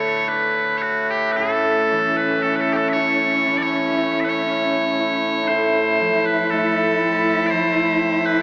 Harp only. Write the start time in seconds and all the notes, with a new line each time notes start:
Already playing: G2 D3 B3 D4
0.28 D4
1.38 A2
1.92 E3
2.44 C#4
2.95 E4
3.47 E3
3.97 E4
4.48 C#4
4.99 E4
5.49 A2
6.01 F3
6.52 A3
7.02 C4
7.52 F3
8.01 C4